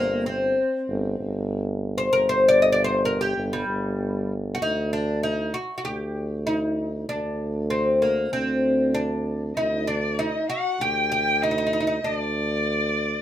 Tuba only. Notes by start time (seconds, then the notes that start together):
Already playing: G1
0.89 G1
1.20 G1
2.13 G1
3.37 G1
3.68 G1
4.60 D2
5.85 D2
7.09 D2
8.32 D2
9.56 D2
10.80 D2
12.04 D2